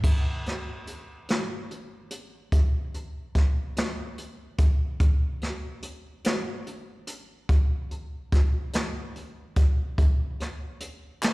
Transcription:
0.04 kick medium
0.04 crash medium
0.46 snare soft
0.46 closed hi-hat soft
0.87 closed hi-hat medium
1.29 snare loud
1.29 closed hi-hat medium
1.71 closed hi-hat soft
2.11 closed hi-hat medium
2.52 kick medium
2.52 closed hi-hat medium
2.94 closed hi-hat soft
3.35 kick medium
3.35 snare soft
3.35 closed hi-hat medium
3.77 snare loud
3.77 closed hi-hat medium
4.18 closed hi-hat medium
4.58 kick medium
4.58 closed hi-hat medium
5.00 kick medium
5.00 closed hi-hat medium
5.42 snare soft
5.42 closed hi-hat soft
5.82 closed hi-hat medium
6.24 snare loud
6.24 closed hi-hat medium
6.67 closed hi-hat medium
7.07 closed hi-hat medium
7.49 kick medium
7.49 closed hi-hat medium
7.91 closed hi-hat soft
8.32 kick medium
8.32 snare soft
8.32 closed hi-hat medium
8.73 snare loud
8.73 closed hi-hat medium
9.16 closed hi-hat medium
9.56 kick medium
9.56 closed hi-hat medium
9.98 kick medium
9.98 closed hi-hat medium
10.40 snare soft
10.40 closed hi-hat soft
10.80 closed hi-hat medium
11.22 snare loud
11.22 clap medium
11.22 closed hi-hat medium

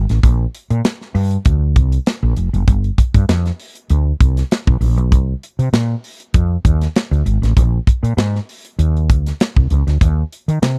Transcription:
0.09 0.19 A1 medium
0.09 snare soft
0.09 closed hi-hat medium
0.23 0.45 A#1 loud
0.23 kick loud
0.23 closed hi-hat medium
0.55 closed hi-hat medium
0.70 0.80 A#2 medium
0.70 closed hi-hat medium
0.85 snare loud
0.85 closed hi-hat medium
1.01 snare soft
1.15 1.36 G2 loud
1.15 open hi-hat medium
1.31 closed hi-hat soft
1.45 1.78 D2 medium
1.45 kick loud
1.45 closed hi-hat medium
1.76 1.97 C2 medium
1.76 kick loud
1.76 closed hi-hat medium
1.92 closed hi-hat medium
2.06 snare loud
2.06 closed hi-hat medium
2.23 2.33 A#1 loud
2.37 2.48 F1 medium
2.37 closed hi-hat medium
2.53 2.63 F#1 medium
2.53 closed hi-hat soft
2.68 2.89 G1 loud
2.68 kick loud
2.68 closed hi-hat medium
2.84 closed hi-hat soft
2.98 kick medium
2.98 closed hi-hat medium
3.14 3.24 G2 loud
3.14 kick medium
3.14 closed hi-hat medium
3.29 3.50 F2 medium
3.29 snare loud
3.29 closed hi-hat medium
3.46 snare soft
3.46 closed hi-hat soft
3.60 open hi-hat medium
3.75 closed hi-hat medium
3.90 4.11 D2 loud
3.90 closed hi-hat medium
4.21 4.42 C2 medium
4.21 kick loud
4.21 closed hi-hat medium
4.37 snare soft
4.37 closed hi-hat medium
4.51 snare loud
4.51 closed hi-hat medium
4.67 4.77 B1 loud
4.67 kick loud
4.81 4.97 A#1 medium
4.81 open hi-hat medium
4.97 5.12 B1 medium
4.97 closed hi-hat soft
5.12 5.33 C2 loud
5.12 kick medium
5.12 closed hi-hat medium
5.43 closed hi-hat medium
5.59 5.69 C3 medium
5.59 closed hi-hat medium
5.73 5.94 A#2 medium
5.73 snare loud
5.73 closed hi-hat medium
6.04 open hi-hat medium
6.20 closed hi-hat medium
6.34 6.55 F2 loud
6.34 kick loud
6.34 closed hi-hat loud
6.65 6.86 D#2 medium
6.65 kick loud
6.65 closed hi-hat medium
6.82 snare soft
6.82 closed hi-hat medium
6.96 snare loud
6.96 closed hi-hat medium
7.11 7.21 D2 medium
7.11 closed hi-hat soft
7.26 7.37 G#1 medium
7.26 closed hi-hat medium
7.42 7.52 A1 loud
7.42 snare soft
7.42 closed hi-hat medium
7.57 7.78 A#1 loud
7.57 kick medium
7.57 closed hi-hat loud
7.87 kick medium
7.87 closed hi-hat medium
8.03 8.13 A#2 medium
8.03 closed hi-hat medium
8.17 8.38 G#2 loud
8.17 snare loud
8.17 closed hi-hat medium
8.35 snare soft
8.49 open hi-hat medium
8.65 closed hi-hat medium
8.79 9.10 D#2 medium
8.79 closed hi-hat medium
8.97 closed hi-hat soft
9.10 9.31 D2 medium
9.10 kick loud
9.10 closed hi-hat medium
9.26 snare soft
9.26 closed hi-hat medium
9.40 snare loud
9.40 closed hi-hat medium
9.56 9.66 C2 loud
9.56 kick loud
9.70 9.82 C#2 medium
9.70 closed hi-hat medium
9.87 9.97 D2 medium
9.87 snare soft
9.87 closed hi-hat soft
10.01 10.22 D#2 loud
10.01 kick loud
10.01 closed hi-hat medium
10.32 closed hi-hat medium
10.48 10.58 D#3 medium
10.48 closed hi-hat medium
10.62 10.79 C3 medium
10.62 snare loud
10.62 closed hi-hat medium

